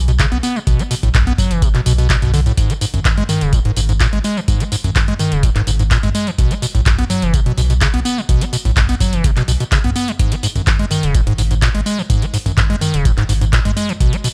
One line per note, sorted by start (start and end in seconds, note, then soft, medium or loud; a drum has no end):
0.00 0.24 B1 medium
0.08 0.12 B2 medium
0.08 closed hi-hat soft
0.08 tambourine soft
0.19 0.26 C#3 loud
0.19 kick loud
0.19 clap loud
0.19 closed hi-hat medium
0.19 tambourine soft
0.32 0.39 B1 medium
0.32 0.38 B3 medium
0.32 closed hi-hat soft
0.43 0.57 B3 medium
0.43 open hi-hat loud
0.43 tambourine medium
0.56 0.59 F#3 medium
0.56 tambourine soft
0.67 0.75 B1 loud
0.67 0.81 B2 medium
0.67 kick loud
0.67 closed hi-hat medium
0.67 tambourine soft
0.79 0.83 B3 medium
0.79 closed hi-hat soft
0.79 tambourine soft
0.91 0.95 B2 medium
0.91 open hi-hat loud
0.91 tambourine medium
1.03 1.32 B1 loud
1.03 1.09 A2 medium
1.03 kick medium
1.03 closed hi-hat soft
1.03 tambourine soft
1.15 1.19 B2 medium
1.15 kick loud
1.15 clap loud
1.15 closed hi-hat medium
1.15 mid tom loud
1.15 tambourine soft
1.27 1.33 B3 medium
1.27 closed hi-hat soft
1.38 1.52 F#3 medium
1.38 kick medium
1.38 mid tom medium
1.38 open hi-hat medium
1.38 tambourine medium
1.51 1.79 F#1 loud
1.51 1.64 E3 loud
1.51 closed hi-hat soft
1.51 tambourine soft
1.62 1.69 B2 medium
1.62 kick loud
1.62 closed hi-hat medium
1.62 tambourine soft
1.75 1.81 B2 loud
1.75 clap soft
1.75 closed hi-hat soft
1.86 2.15 B1 medium
1.86 1.93 B2 loud
1.86 open hi-hat loud
1.86 tambourine medium
1.98 2.08 B2 medium
1.98 closed hi-hat soft
1.98 tambourine soft
2.10 2.17 B2 loud
2.10 kick loud
2.10 clap loud
2.10 closed hi-hat medium
2.10 tambourine soft
2.22 2.51 B1 medium
2.22 2.32 B2 medium
2.22 closed hi-hat soft
2.22 mid tom loud
2.22 tambourine soft
2.34 2.41 D3 loud
2.34 open hi-hat medium
2.34 tambourine medium
2.46 2.52 A2 medium
2.46 closed hi-hat soft
2.46 tambourine soft
2.57 2.65 G#1 loud
2.57 2.71 G#2 medium
2.57 kick loud
2.57 closed hi-hat medium
2.57 tambourine soft
2.70 2.74 G#3 medium
2.70 closed hi-hat medium
2.70 tambourine soft
2.81 2.85 G#2 medium
2.81 open hi-hat loud
2.81 tambourine medium
2.94 3.22 G#1 loud
2.94 3.00 F#2 medium
2.94 kick medium
2.94 closed hi-hat soft
2.94 tambourine soft
3.05 3.09 G#2 medium
3.05 kick loud
3.05 clap loud
3.05 closed hi-hat medium
3.05 mid tom loud
3.05 tambourine soft
3.17 3.24 G#3 medium
3.17 closed hi-hat soft
3.29 3.43 D#3 medium
3.29 mid tom medium
3.29 open hi-hat medium
3.29 tambourine medium
3.41 3.70 D#1 medium
3.41 3.54 C#3 loud
3.41 closed hi-hat soft
3.41 tambourine soft
3.53 3.60 G#2 medium
3.53 kick loud
3.53 closed hi-hat medium
3.53 tambourine soft
3.65 3.71 G#2 loud
3.65 closed hi-hat soft
3.76 4.05 G#1 medium
3.76 3.81 G#2 medium
3.76 open hi-hat loud
3.76 tambourine medium
3.89 3.93 G#2 medium
3.89 closed hi-hat soft
3.89 tambourine soft
4.00 4.07 A#2 loud
4.00 kick loud
4.00 clap loud
4.00 closed hi-hat medium
4.00 tambourine soft
4.13 4.20 G#1 medium
4.13 4.19 G#3 medium
4.13 closed hi-hat soft
4.24 4.38 G#3 medium
4.24 open hi-hat medium
4.24 tambourine medium
4.37 4.40 D#3 medium
4.37 tambourine soft
4.48 4.56 G#1 loud
4.48 4.62 G#2 medium
4.48 kick loud
4.48 closed hi-hat medium
4.48 tambourine soft
4.60 4.64 G#3 medium
4.60 closed hi-hat medium
4.60 tambourine soft
4.72 4.76 G#2 medium
4.72 open hi-hat loud
4.72 tambourine medium
4.84 5.13 G#1 loud
4.84 4.91 F#2 medium
4.84 kick medium
4.84 closed hi-hat soft
4.84 tambourine soft
4.96 5.00 G#2 medium
4.96 kick loud
4.96 clap loud
4.96 closed hi-hat medium
4.96 mid tom medium
4.96 tambourine soft
5.08 5.14 G#3 medium
5.08 closed hi-hat soft
5.19 5.33 D#3 medium
5.19 mid tom medium
5.19 open hi-hat medium
5.19 tambourine medium
5.32 5.60 D#1 loud
5.32 5.45 C#3 loud
5.32 closed hi-hat soft
5.32 tambourine soft
5.43 5.50 G#2 medium
5.43 kick loud
5.43 closed hi-hat medium
5.43 tambourine soft
5.56 5.62 G#2 loud
5.56 clap soft
5.56 closed hi-hat soft
5.67 5.96 G#1 medium
5.67 5.71 G#2 medium
5.67 open hi-hat loud
5.67 tambourine medium
5.79 5.83 G#2 medium
5.79 closed hi-hat soft
5.79 tambourine soft
5.91 5.98 A#2 loud
5.91 kick loud
5.91 clap loud
5.91 closed hi-hat medium
5.91 tambourine soft
6.03 6.10 G#1 medium
6.03 6.10 G#3 medium
6.03 closed hi-hat soft
6.03 mid tom medium
6.03 tambourine soft
6.15 6.29 G#3 medium
6.15 open hi-hat medium
6.15 tambourine medium
6.27 6.31 D#3 medium
6.27 closed hi-hat soft
6.27 tambourine soft
6.38 6.46 B1 loud
6.38 6.52 B2 medium
6.38 kick loud
6.38 closed hi-hat medium
6.38 tambourine soft
6.51 6.55 B3 medium
6.51 closed hi-hat medium
6.51 tambourine soft
6.62 6.66 B2 medium
6.62 open hi-hat loud
6.62 tambourine medium
6.75 7.03 B1 loud
6.75 6.81 A2 medium
6.75 kick medium
6.75 closed hi-hat soft
6.75 tambourine soft
6.86 6.90 B2 medium
6.86 kick loud
6.86 clap loud
6.86 closed hi-hat medium
6.86 mid tom medium
6.86 tambourine soft
6.98 7.05 B3 medium
6.98 closed hi-hat soft
7.10 7.24 F#3 medium
7.10 mid tom medium
7.10 open hi-hat medium
7.10 tambourine medium
7.22 7.51 F#1 loud
7.22 7.35 E3 loud
7.22 closed hi-hat medium
7.22 tambourine soft
7.34 7.41 B2 medium
7.34 kick loud
7.34 closed hi-hat medium
7.34 tambourine soft
7.46 7.52 B2 loud
7.46 closed hi-hat soft
7.58 7.86 B1 medium
7.58 7.62 B2 medium
7.58 open hi-hat loud
7.58 tambourine medium
7.70 7.74 B2 medium
7.70 closed hi-hat soft
7.70 tambourine soft
7.81 7.88 C#3 loud
7.81 kick loud
7.81 clap loud
7.81 closed hi-hat medium
7.81 tambourine soft
7.94 8.01 B1 medium
7.94 8.00 B3 medium
7.94 closed hi-hat soft
8.05 8.19 B3 medium
8.05 open hi-hat medium
8.05 tambourine medium
8.17 8.21 F#3 medium
8.17 tambourine soft
8.29 8.37 B1 loud
8.29 8.43 B2 medium
8.29 kick loud
8.29 closed hi-hat medium
8.29 tambourine soft
8.41 8.45 B3 medium
8.41 closed hi-hat medium
8.41 tambourine soft
8.53 8.57 B2 medium
8.53 open hi-hat loud
8.53 tambourine medium
8.65 8.94 B1 loud
8.65 8.71 A2 medium
8.65 kick medium
8.65 closed hi-hat soft
8.65 tambourine soft
8.77 8.81 B2 medium
8.77 kick loud
8.77 clap loud
8.77 closed hi-hat medium
8.77 mid tom medium
8.77 tambourine soft
8.89 8.95 B3 medium
8.89 closed hi-hat soft
8.89 tambourine soft
9.00 9.14 F#3 medium
9.00 kick medium
9.00 mid tom medium
9.00 open hi-hat medium
9.00 tambourine medium
9.13 9.41 F#1 loud
9.13 9.26 E3 loud
9.13 closed hi-hat medium
9.13 tambourine soft
9.24 9.31 B2 medium
9.24 kick loud
9.24 closed hi-hat medium
9.24 tambourine soft
9.37 9.43 B2 loud
9.37 clap soft
9.37 closed hi-hat soft
9.37 tambourine soft
9.48 9.56 B1 loud
9.48 9.52 B2 medium
9.48 open hi-hat loud
9.48 tambourine medium
9.60 9.64 B2 medium
9.60 closed hi-hat soft
9.60 tambourine soft
9.72 9.79 C#3 loud
9.72 kick loud
9.72 clap loud
9.72 closed hi-hat medium
9.72 tambourine soft
9.84 9.91 B1 medium
9.84 9.91 B3 medium
9.84 closed hi-hat soft
9.84 mid tom medium
9.96 10.10 B3 medium
9.96 open hi-hat medium
9.96 tambourine medium
10.08 10.12 F#3 medium
10.08 closed hi-hat soft
10.08 tambourine soft
10.19 10.27 G#1 loud
10.19 10.33 G#2 medium
10.19 kick loud
10.19 closed hi-hat medium
10.19 tambourine soft
10.32 10.36 G#3 medium
10.32 closed hi-hat medium
10.32 tambourine soft
10.43 10.47 G#2 medium
10.43 open hi-hat loud
10.43 tambourine medium
10.56 10.84 G#1 loud
10.56 10.62 F#2 medium
10.56 kick medium
10.56 closed hi-hat soft
10.56 tambourine soft
10.67 10.71 G#2 medium
10.67 kick loud
10.67 clap loud
10.67 closed hi-hat medium
10.67 mid tom medium
10.67 tambourine soft
10.79 10.86 G#3 medium
10.79 closed hi-hat soft
10.91 11.05 D#3 medium
10.91 mid tom medium
10.91 open hi-hat medium
10.91 tambourine medium
11.03 11.32 D#1 loud
11.03 11.16 C#3 loud
11.03 closed hi-hat medium
11.03 tambourine soft
11.15 11.21 G#2 medium
11.15 kick loud
11.15 closed hi-hat medium
11.15 tambourine soft
11.27 11.33 G#2 loud
11.27 closed hi-hat soft
11.38 11.67 G#1 medium
11.38 11.43 G#2 medium
11.38 open hi-hat loud
11.38 tambourine medium
11.51 11.55 G#2 medium
11.51 closed hi-hat soft
11.51 tambourine soft
11.62 11.69 A#2 loud
11.62 kick loud
11.62 clap loud
11.62 closed hi-hat medium
11.62 tambourine soft
11.75 11.82 G#1 medium
11.75 11.81 G#3 medium
11.75 closed hi-hat soft
11.86 12.00 G#3 medium
11.86 open hi-hat medium
11.86 tambourine medium
11.98 12.02 D#3 medium
11.98 tambourine soft
12.10 12.18 G#1 loud
12.10 12.24 G#2 medium
12.10 kick loud
12.10 closed hi-hat medium
12.10 tambourine soft
12.22 12.26 G#3 medium
12.22 closed hi-hat medium
12.22 tambourine soft
12.34 12.38 G#2 medium
12.34 open hi-hat loud
12.34 tambourine medium
12.46 12.74 G#1 loud
12.46 12.52 F#2 medium
12.46 kick medium
12.46 closed hi-hat soft
12.46 tambourine soft
12.57 12.62 G#2 medium
12.57 kick loud
12.57 clap loud
12.57 closed hi-hat medium
12.57 mid tom medium
12.57 tambourine soft
12.70 12.76 G#3 medium
12.70 closed hi-hat soft
12.81 12.95 D#3 medium
12.81 mid tom medium
12.81 open hi-hat loud
12.81 tambourine medium
12.94 13.22 D#1 loud
12.94 13.07 C#3 loud
12.94 closed hi-hat medium
12.94 tambourine soft
13.05 13.12 G#2 medium
13.05 kick loud
13.05 closed hi-hat medium
13.05 tambourine soft
13.17 13.24 G#2 loud
13.17 clap soft
13.17 closed hi-hat soft
13.29 13.58 G#1 medium
13.29 13.33 G#2 medium
13.29 open hi-hat loud
13.29 tambourine medium
13.41 13.45 G#2 medium
13.41 closed hi-hat soft
13.41 tambourine soft
13.53 13.60 A#2 loud
13.53 kick loud
13.53 clap loud
13.53 closed hi-hat medium
13.53 tambourine soft
13.65 13.72 G#1 medium
13.65 13.71 G#3 medium
13.65 closed hi-hat soft
13.65 mid tom medium
13.65 tambourine soft
13.77 13.90 G#3 medium
13.77 open hi-hat medium
13.77 tambourine medium
13.89 13.93 D#3 medium
13.89 closed hi-hat soft
13.89 tambourine soft
14.00 14.08 B1 loud
14.00 14.14 B2 medium
14.00 kick loud
14.00 closed hi-hat medium
14.00 tambourine soft
14.13 14.17 B3 medium
14.13 closed hi-hat medium
14.13 tambourine soft
14.24 14.28 B2 medium
14.24 open hi-hat loud
14.24 tambourine medium